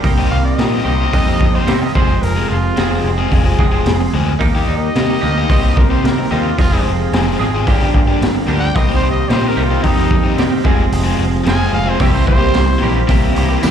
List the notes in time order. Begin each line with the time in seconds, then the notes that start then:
0.03 C2 C3 D#3 A#3 C4 G4, kick, open hi-hat
0.18 G3 C4 D#4 G4
0.30 C2 F5
0.45 D#5
0.59 A#2 G3 C4 D#4 G4, snare, open hi-hat
0.73 G3 C4 D#4 G4
0.84 C2 C3 D#3 A#3 C4 G4
1.01 G3 C4 D#4 G4
1.13 F2 G3 C4 D#4 G4, kick, open hi-hat
1.28 G3 C4 D#4 G4
1.41 kick
1.55 G3 C4 D#4 G4 C5
1.66 C3 D#3 A#3 C4 G4, snare, open hi-hat
1.81 D#5, muted overdriven electric guitar stroke
1.95 F1 F2 C3 F3 G#3 C4 G#4 C5, kick
2.22 F1 A#4, open hi-hat
2.37 F3 G#3 C4 G#4
2.49 F1 F4
2.77 F1 F2 C3 F3 G#3 C4 G#4, snare, open hi-hat
2.90 F3 G#3 C4 G#4
3.04 F1
3.18 F3 G#3 C4 G#4
3.31 F1 F3 G#3 C4 G#4, kick, open hi-hat
3.45 F3 G#3 C4 G#4
3.59 F1 F2 C3 F3 G#3 C4 G#4, kick
3.72 F3 G#3 C4 G#4
3.86 F1, snare, open hi-hat
4.01 muted overdriven electric guitar stroke
4.13 D2 F3 G#3 C4 G#4
4.39 D#2 D#3 A#3 D#4 G4 A#4 D#5 A#5, kick, open hi-hat
4.55 A#3 D#4 G4
4.67 D#2 D#5
4.95 C3 A#3 D#4 G4, snare, open hi-hat
5.10 A#3 D#4 G4
5.21 D2 D#3 A#3 D#4 G4, snare
5.38 A#3 D#4 G4
5.49 C2 C3 D#3 G3 A#3 C4 D#4 G4 A#5, kick, open hi-hat
5.53 C5
5.63 G3 C4 D#4 G4
5.76 A#4, kick
5.89 G3 C4 D#4 G4 C5
6.04 C3 A#4, snare, open hi-hat
6.19 muted overdriven electric guitar stroke
6.31 D#2 C3 D#3 G3 A#3 C4 D#4 F4 G4
6.57 F1 F2 C3 F3 G#3 C4 F4 G#4 F5 C6, kick, open hi-hat
6.74 F3 G#3 C4 G#4
6.86 F1
7.13 F1 F3 G#3 C4 G#4, snare, open hi-hat
7.28 F3 G#3 C4 G#4
7.39 G#1 F2 C3 F3 G#3 C4 G#4
7.55 F3 G#3 C4 G#4
7.65 G1 G2 D3 F3 A#3 D4 G4 D5 A#5, kick, open hi-hat
7.69 D4 G4
7.81 A#3 D4 G4
7.94 G1, kick
8.08 A#3 D4 G4
8.21 G1, snare, open hi-hat
8.35 muted overdriven electric guitar stroke
8.47 D2 G2 D3 F3 A#3 D4 G4
8.59 G5
8.74 C2 C3 D#3 A#3 C4 G4 C5 D#5 A#5, kick, open hi-hat
8.89 C4 D#4 G4
8.95 C5
9.02 C2
9.11 D#5
9.29 A#2 C4 D#4 G4 C5, snare, open hi-hat
9.43 C4 D#4 G4
9.48 A#4
9.57 C2 C3 D#3 A#3 C4 G4
9.63 F4
9.71 C4 D#4 G4
9.82 F2 C4 D#4 G4, kick, open hi-hat
9.97 C4 D#4 G4
10.11 kick
10.24 C4 D#4 G4
10.37 C3 D#3 A#3 C4 G4, snare, open hi-hat
10.51 muted overdriven electric guitar stroke
10.63 F1 F2 C3 F3 G#3 C4 G#4 C5 F5 C6, kick
10.92 F1, open hi-hat
11.04 F3 G#3 C4 G#4
11.19 F1
11.44 F1 F2 C3 F3 G#3 C4 G#4, snare, open hi-hat
11.48 C4 G#4 G#5
11.58 F3 G#3 C4 G#4
11.73 F1 F5
11.84 F3 G#3 C4 G#4
11.89 C5
11.99 C2 C3 E3 G3 A#3 C4 E4 G4 E5 A#5, kick, open hi-hat
12.11 E3 A#3 C4 G4 C5
12.27 C2 C5, kick
12.38 E3 A#3 C4 G4
12.54 C2, snare, open hi-hat
12.65 muted overdriven electric guitar stroke
12.79 A#1 E3 A#3 C4 E4 G4
12.83 C3 G3 A#3
13.07 C2 C3 E3 G3 A#3 C4 E4 G4 C5 E5 A#5, kick, open hi-hat
13.34 C2 E3 G3 A#3 C4 E4 G4, open hi-hat
13.38 G4
13.49 A#3 C4 E4 G4
13.62 E2 C3 E3 G3 A#3 C4 E4 G4, snare, open hi-hat, tambourine